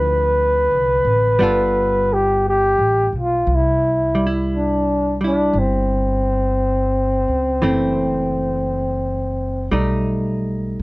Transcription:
0.00 0.66 D2 medium
0.00 1.37 D3 soft
0.00 1.38 F3 soft
0.00 1.40 C4 soft
0.00 1.41 E4 soft
0.00 2.14 B4 medium
0.71 1.02 C2 soft
1.04 1.36 A1 medium
1.39 2.73 G1 medium
1.39 3.46 G3 soft
1.39 3.47 B3 medium
1.39 3.48 F4 medium
1.43 3.49 A4 soft
2.13 2.44 G4 medium
2.49 3.12 G4 medium
2.79 3.10 A1 medium
3.13 3.44 B1 soft
3.18 3.56 F4 medium
3.47 5.49 C2 medium
3.55 4.37 E4 medium
4.15 5.20 G3 soft
4.27 5.23 E4 soft
4.56 5.19 D4 medium
5.21 7.61 G3 soft
5.21 7.63 E4 soft
5.27 5.60 D4 medium
5.53 7.24 G1 medium
5.59 9.74 C4 medium
7.28 7.59 C#2 soft
7.62 9.68 F#1 medium
7.62 9.71 E3 soft
7.62 9.71 A3 soft
7.62 9.72 C4 soft
9.71 10.75 B1 medium
9.71 10.82 G3 soft
9.71 10.82 A3 soft
9.71 10.82 D#4 soft

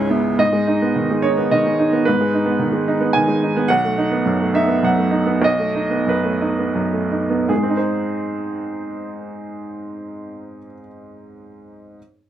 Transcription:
0.00 0.36 C#2 soft
0.00 0.29 G#2 soft
0.00 0.42 G#3 soft
0.00 0.11 C#4 soft
0.00 0.42 C#4 soft
0.00 0.10 E4 soft
0.10 0.39 B3 soft
0.10 0.39 E4 soft
0.39 2.01 G#2 soft
0.39 1.19 D#5 medium
0.52 0.75 G#3 soft
0.67 0.90 D#4 soft
0.82 1.04 B3 soft
0.96 1.18 D#3 soft
1.11 1.32 G#3 soft
1.22 1.46 D#4 soft
1.22 1.48 C#5 medium
1.37 1.59 B3 soft
1.51 1.73 D#3 soft
1.51 2.02 D#5 medium
1.66 1.87 G#3 soft
1.79 2.00 D#4 soft
1.93 2.14 B3 soft
2.05 3.66 G#2 soft
2.05 3.09 B4 medium
2.21 2.41 G#3 soft
2.34 2.55 D#4 soft
2.46 2.67 B3 soft
2.59 2.81 D#3 soft
2.72 2.94 G#3 soft
2.88 3.09 D#4 soft
3.00 3.22 B3 soft
3.13 3.36 D#3 soft
3.13 3.65 G#5 medium
3.28 3.50 G#3 soft
3.43 3.64 D#4 soft
3.56 3.70 B3 soft
3.68 5.40 B1 soft
3.68 4.50 F#5 medium
3.84 4.06 A3 soft
3.98 4.20 D#4 soft
4.11 4.34 B3 soft
4.26 4.48 F#2 soft
4.41 4.63 A3 soft
4.54 4.77 D#4 soft
4.54 4.82 E5 medium
4.68 4.92 B3 soft
4.83 5.07 F#2 soft
4.83 5.40 F#5 medium
4.98 5.22 A3 soft
5.11 5.36 D#4 soft
5.26 5.52 B3 soft
5.42 7.44 B1 soft
5.42 6.03 D#5 medium
5.59 5.84 A3 soft
5.75 6.00 D#4 soft
5.90 6.17 B3 soft
6.07 6.33 F#2 soft
6.07 6.72 B4 soft
6.23 6.51 A3 soft
6.41 6.68 D#4 soft
6.59 6.87 B3 soft
6.75 7.04 F#2 soft
6.93 7.23 A3 soft
7.12 7.41 D#4 soft
7.30 7.49 B3 soft
7.48 10.58 G#2 soft
7.48 10.58 G#4 soft
7.56 10.65 G#3 soft
7.63 10.72 C4 soft
7.70 10.79 D#4 soft
7.77 10.86 C5 soft

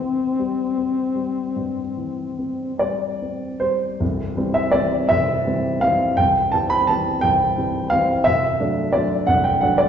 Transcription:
0.00 1.52 C2 soft
0.00 0.23 E3 soft
0.00 2.78 C4 medium
0.00 0.62 C4 soft
0.39 1.01 G3 soft
0.78 1.40 C4 soft
1.16 1.80 G3 soft
1.56 2.23 G2 soft
1.97 2.65 E3 soft
2.39 3.06 C4 soft
2.79 3.46 G3 soft
2.79 3.61 D5 medium
3.22 3.86 C4 soft
3.60 4.00 G3 soft
3.60 4.54 C5 medium
4.00 4.36 C1 medium
4.00 4.36 C2 medium
4.37 4.70 E3 medium
4.37 4.70 G3 medium
4.37 4.70 C4 medium
4.54 4.73 E5 medium
4.72 5.06 E3 medium
4.72 5.06 G3 medium
4.72 5.07 C4 medium
4.72 5.09 D5 loud
5.09 5.45 C1 medium
5.09 5.45 C2 medium
5.09 5.81 E5 loud
5.46 5.78 E3 medium
5.46 5.79 G3 medium
5.46 5.79 C4 medium
5.81 6.14 E3 medium
5.81 6.14 G3 medium
5.81 6.14 C4 medium
5.81 6.17 F5 loud
6.17 6.52 C1 medium
6.17 6.52 C2 medium
6.17 6.52 G5 loud
6.52 6.85 E3 medium
6.52 6.85 G3 medium
6.52 6.85 C4 medium
6.52 6.70 A5 loud
6.70 6.88 B5 loud
6.87 7.19 E3 medium
6.87 7.20 G3 medium
6.87 7.20 C4 medium
6.87 7.22 A5 loud
7.21 7.57 C1 medium
7.21 7.56 C2 medium
7.21 7.91 G5 loud
7.57 7.88 E3 soft
7.57 7.89 G3 medium
7.57 7.89 C4 medium
7.90 8.22 E3 medium
7.90 8.23 G3 medium
7.90 8.23 C4 medium
7.90 8.25 F5 loud
8.24 8.59 C1 medium
8.24 8.59 C2 medium
8.24 8.94 E5 loud
8.60 8.91 F#3 medium
8.60 8.91 A3 medium
8.60 8.92 D4 medium
8.93 9.26 F#3 medium
8.93 9.26 A3 medium
8.93 9.26 D4 medium
8.93 9.28 D5 medium
9.27 9.62 C1 medium
9.27 9.62 C2 medium
9.27 9.45 F#5 loud
9.44 9.62 G5 medium
9.61 9.89 F#3 medium
9.61 9.89 A3 medium
9.61 9.89 D4 medium
9.61 9.79 F#5 medium
9.78 9.89 D5 loud

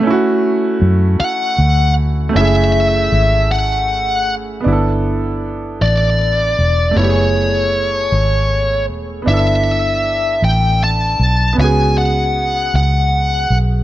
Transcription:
0.00 2.28 A3 medium
0.00 2.30 C#4 medium
0.05 0.78 D2 medium
0.05 2.32 E4 medium
0.10 2.34 F#4 medium
0.82 1.16 F#2 medium
1.20 1.93 F#5 loud
1.20 muted fingered electric bass stroke soft
1.58 2.31 D2 medium
2.29 4.59 A3 medium
2.29 4.61 C#4 medium
2.35 3.08 F#1 loud
2.35 4.63 E4 medium
2.35 3.54 E5 medium
2.41 4.65 G#4 medium
3.12 4.62 G#1 medium
3.52 4.33 F#5 loud
4.61 6.90 B3 medium
4.61 6.92 D4 medium
4.66 5.77 G1 medium
4.66 6.93 E4 medium
4.72 6.96 A4 medium
5.81 6.54 A1 medium
5.81 6.97 D5 medium
6.59 6.93 E1 medium
6.91 9.20 A3 medium
6.91 9.21 B3 soft
6.96 8.08 F#1 medium
6.96 9.24 E4 soft
6.96 8.85 C#5 medium
7.03 7.06 G4 soft
7.09 9.30 G#4 medium
8.12 8.89 G#1 medium
8.89 9.23 E1 medium
9.22 11.51 B3 medium
9.22 11.53 D4 medium
9.27 10.38 G1 medium
9.27 11.55 E4 medium
9.27 10.46 E5 medium
9.34 11.57 A4 medium
10.42 11.15 A1 medium
10.42 10.83 G5 medium
10.84 11.55 A5 loud
11.19 11.54 B1 medium
11.53 13.82 B3 medium
11.53 13.84 C#4 medium
11.58 12.69 C#2 medium
11.58 13.84 F#4 medium
11.58 11.98 G#5 medium
11.64 13.84 G#4 medium
11.98 12.75 F#5 medium
12.74 13.47 C#2 medium
12.74 13.57 F#5 medium
13.50 13.84 B1 medium

